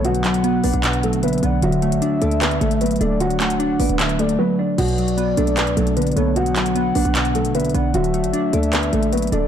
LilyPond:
<<
  \new Staff \with { instrumentName = "Soft synth lead" } { \time 4/4 \key b \minor \tempo 4 = 152 fis''2. e''8 fis''8 | e''2.~ e''8 d''8 | fis''2 e''8 d''8 r4 | d''2.~ d''8 cis''8 |
fis''2. e''8 fis''8 | e''2.~ e''8 d''8 | }
  \new Staff \with { instrumentName = "Grand piano" } { \time 4/4 \key b \minor <fis fis'>4. <b b'>4 <a a'>8 <b b'>8 <d' d''>8 | <fis fis'>4. <a a'>8 <b b'>8 <a a'>8 <b b'>8 <a a'>8 | <fis fis'>4. <b b'>4 <a a'>8 <b b'>8 <d' d''>8 | <fis fis'>4. <a a'>8 <b b'>8 <a a'>8 <b b'>8 <a a'>8 |
<fis fis'>4. <b b'>4 <a a'>8 <b b'>8 <d' d''>8 | <fis fis'>4. <a a'>8 <b b'>8 <a a'>8 <b b'>8 <a a'>8 | }
  \new Staff \with { instrumentName = "Synth keys" } { \clef bass \time 4/4 \key b \minor <b, d fis b>8 fis8 b8 d'8 b,8 fis8 d8 b8 | d8 a8 d'8 d''8 d8 a8 fis8 d'8 | d8 a8 d'8 d''8 d8 a8 fis8 d'8 | b,8 fis8 b8 d'8 b,8 fis8 d8 b8 |
b,8 fis8 b8 d'8 b,8 fis8 d8 b8 | d8 a8 d'8 d''8 d8 a8 fis8 d'8 | }
  \new Staff \with { instrumentName = "808-style bass" } { \clef bass \time 4/4 \key b \minor b,,4. b,,16 b,,4 a,,16. b,,16. b,,8 | d,,8. fis,,16 r8 d,4 a,,4 d,,8~ | d,,4. a,,16 d,,4~ d,,16 r4 | b,,4. b,,8. cis,16 b,,4 b,,8~ |
b,,4. b,,16 b,,4 a,,16. b,,16. b,,8 | d,,8. fis,,16 r8 d,4 a,,4 d,,8 | }
  \new DrumStaff \with { instrumentName = "Drums" } \drummode { \time 4/4 hh16 hh16 <hc hh>16 hh16 hh8 hho16 hh16 <hc hh>16 hh16 hh16 hh16 hh32 hh32 hh32 hh32 hh8 | hh16 hh16 hh16 hh16 hh8 hh16 hh16 <hc hh>16 hh16 hh16 hh16 hh32 hh32 hh32 hh32 hh8 | hh16 hh16 <hc hh>16 hh16 hh8 hho16 hh16 <hc hh>16 hh16 hh16 hh16 r4 | <cymc hh>16 hh16 hh16 hh16 hh8 hh16 hh16 <hc hh>16 hh16 hh16 hh16 hh32 hh32 hh32 hh32 hh8 |
hh16 hh16 <hc hh>16 hh16 hh8 hho16 hh16 <hc hh>16 hh16 hh16 hh16 hh32 hh32 hh32 hh32 hh8 | hh16 hh16 hh16 hh16 hh8 hh16 hh16 <hc hh>16 hh16 hh16 hh16 hh32 hh32 hh32 hh32 hh8 | }
>>